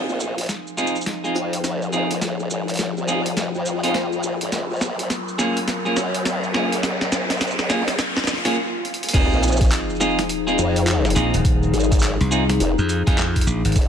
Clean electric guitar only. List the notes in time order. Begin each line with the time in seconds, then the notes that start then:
Already playing: C4 D#4 F4 G#4
0.77 C4 D#4 F4 G#4
1.24 C4 D#4 F4 G#4
1.93 C4 D#4 F4 G#4
3.08 C4 D#4 F4 G#4
3.83 C4 D#4 F4 G#4
5.38 A#3 C#4 F4 G#4
5.85 A#3 C#4 F4 G#4
6.54 A#3 C#4 F4 G#4
7.69 A#3 C#4 F4 G#4
8.45 A#3 C#4 F4 G#4
9.13 C4 D#4 F4 G#4
10.00 C4 D#4 F4 G#4
10.47 C4 D#4 F4 G#4
11.15 C4 D#4 F4 G#4
12.31 C4 D#4 F4 G#4
13.07 C4 D#4 F4 G#4